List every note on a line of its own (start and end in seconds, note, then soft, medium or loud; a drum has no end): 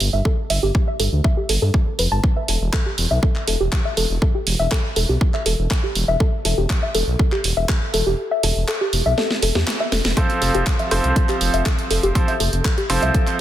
0.00 0.09 G1 medium
0.00 open hi-hat loud
0.13 0.21 G1 medium
0.13 0.20 E5 medium
0.25 0.32 A4 medium
0.25 kick loud
0.50 0.59 G1 medium
0.50 0.60 E5 medium
0.50 open hi-hat loud
0.63 0.71 G1 medium
0.63 0.69 G4 medium
0.75 kick loud
0.88 0.94 E5 medium
1.00 1.08 G1 medium
1.00 1.06 A4 medium
1.00 open hi-hat loud
1.12 1.21 D2 medium
1.24 1.35 E5 medium
1.24 kick loud
1.37 1.43 G4 medium
1.49 1.58 G1 medium
1.49 1.53 A4 medium
1.49 open hi-hat loud
1.62 1.70 G2 medium
1.62 1.71 A4 medium
1.74 1.81 A4 medium
1.74 kick loud
1.99 2.08 F1 medium
1.99 2.06 B4 medium
1.99 open hi-hat loud
2.12 2.20 G1 medium
2.12 2.21 A5 loud
2.24 kick loud
2.36 2.43 E5 medium
2.48 2.57 E1 medium
2.48 2.55 A4 medium
2.48 open hi-hat loud
2.61 2.69 E1 medium
2.73 2.83 A4 medium
2.73 kick loud
2.73 clap loud
2.86 2.92 G4 medium
2.98 3.07 E1 medium
2.98 open hi-hat loud
3.11 3.19 B1 medium
3.11 3.17 E5 medium
3.23 3.29 A4 medium
3.23 kick loud
3.36 clap soft
3.48 3.56 E1 medium
3.48 3.58 A4 medium
3.48 open hi-hat loud
3.60 3.69 E1 medium
3.60 3.67 G4 medium
3.72 kick loud
3.72 clap loud
3.85 3.91 E5 medium
3.97 4.06 E1 medium
3.97 4.04 A4 medium
3.97 open hi-hat medium
4.10 4.18 E1 medium
4.22 4.32 A4 medium
4.22 kick loud
4.35 4.41 G4 medium
4.47 4.56 E1 medium
4.47 open hi-hat loud
4.59 4.68 E1 medium
4.59 4.66 E5 medium
4.71 4.78 A4 medium
4.71 kick loud
4.71 clap loud
4.96 5.05 E1 medium
4.96 5.06 A4 medium
4.96 open hi-hat loud
5.09 5.17 B1 medium
5.09 5.15 G4 medium
5.21 kick loud
5.34 5.40 E5 medium
5.34 clap soft
5.46 5.55 E1 medium
5.46 5.53 A4 medium
5.46 open hi-hat medium
5.59 5.67 E1 medium
5.71 5.81 A4 medium
5.71 kick loud
5.71 clap loud
5.83 5.90 G4 medium
5.95 6.04 E1 medium
5.95 open hi-hat medium
6.08 6.17 E1 medium
6.08 6.15 E5 medium
6.20 6.27 A4 medium
6.20 kick loud
6.45 6.54 E1 medium
6.45 6.55 A4 medium
6.45 open hi-hat medium
6.58 6.66 E1 medium
6.58 6.64 G4 medium
6.70 kick loud
6.70 clap loud
6.83 6.89 E5 medium
6.95 7.03 E1 medium
6.95 7.01 A4 medium
6.95 open hi-hat loud
7.07 7.16 B1 medium
7.19 7.30 A4 medium
7.19 kick loud
7.32 7.39 G4 medium
7.32 clap soft
7.44 7.53 E1 medium
7.44 open hi-hat medium
7.57 7.65 E1 medium
7.57 7.63 E5 medium
7.69 7.76 A4 medium
7.69 kick loud
7.69 clap loud
7.94 8.03 E1 medium
7.94 8.04 A4 medium
7.94 open hi-hat medium
8.07 8.15 E1 medium
8.07 8.13 G4 medium
8.31 8.38 E5 medium
8.43 8.52 E1 medium
8.43 8.50 A4 medium
8.43 open hi-hat loud
8.56 8.64 E1 medium
8.68 8.78 A4 medium
8.68 clap loud
8.81 8.87 G4 medium
8.93 9.02 E1 medium
8.93 open hi-hat loud
9.06 9.14 B1 medium
9.06 9.12 E5 medium
9.18 9.24 A4 medium
9.18 snare medium
9.30 snare medium
9.42 9.51 E1 medium
9.42 9.53 A4 medium
9.42 open hi-hat medium
9.55 9.64 E2 medium
9.55 9.62 G4 medium
9.55 snare medium
9.67 snare medium
9.67 clap loud
9.80 9.86 E5 medium
9.92 10.01 E1 medium
9.92 9.99 A4 medium
9.92 snare medium
9.92 open hi-hat medium
10.05 10.13 E1 medium
10.05 snare medium
10.05 open hi-hat medium
10.17 10.88 F3 medium
10.17 10.88 C4 medium
10.17 10.88 A4 medium
10.17 10.24 A4 medium
10.17 10.88 C5 medium
10.17 kick loud
10.17 closed hi-hat medium
10.30 closed hi-hat soft
10.42 10.51 F1 medium
10.42 10.48 A4 medium
10.42 open hi-hat loud
10.55 10.63 F1 medium
10.55 10.61 G4 medium
10.55 closed hi-hat soft
10.67 kick loud
10.67 clap loud
10.67 closed hi-hat medium
10.79 10.86 E5 medium
10.79 closed hi-hat soft
10.91 11.00 F1 medium
10.91 12.12 F3 medium
10.91 12.12 C4 medium
10.91 12.12 A4 medium
10.91 10.98 A4 medium
10.91 12.12 C5 medium
10.91 open hi-hat loud
11.04 11.12 C2 medium
11.04 closed hi-hat soft
11.16 11.23 A4 medium
11.16 kick loud
11.16 closed hi-hat medium
11.29 11.35 G4 medium
11.29 clap soft
11.29 closed hi-hat soft
11.41 11.50 F1 medium
11.41 open hi-hat loud
11.54 11.62 F1 medium
11.54 11.60 E5 medium
11.54 closed hi-hat soft
11.66 11.72 A4 medium
11.66 kick loud
11.66 clap loud
11.66 closed hi-hat medium
11.79 closed hi-hat soft
11.91 11.99 F1 medium
11.91 11.97 A4 medium
11.91 open hi-hat loud
12.03 12.12 F1 medium
12.03 12.10 G4 medium
12.03 closed hi-hat soft
12.15 12.30 F3 medium
12.15 12.30 C4 medium
12.15 12.30 A4 medium
12.15 12.30 C5 medium
12.15 kick loud
12.15 closed hi-hat medium
12.28 12.34 E5 medium
12.28 closed hi-hat soft
12.40 12.49 F1 medium
12.40 12.47 A4 medium
12.40 open hi-hat loud
12.53 12.61 F1 medium
12.53 closed hi-hat soft
12.65 12.72 A4 medium
12.65 kick loud
12.65 clap loud
12.65 closed hi-hat medium
12.78 12.84 G4 medium
12.78 closed hi-hat soft
12.90 12.99 F1 medium
12.90 13.41 F3 medium
12.90 13.41 C4 medium
12.90 13.41 A4 medium
12.90 13.41 C5 loud
12.90 open hi-hat loud
13.02 13.11 C2 medium
13.02 13.09 E5 medium
13.02 closed hi-hat soft
13.14 13.21 A4 medium
13.14 kick loud
13.14 closed hi-hat medium
13.27 clap soft
13.27 closed hi-hat soft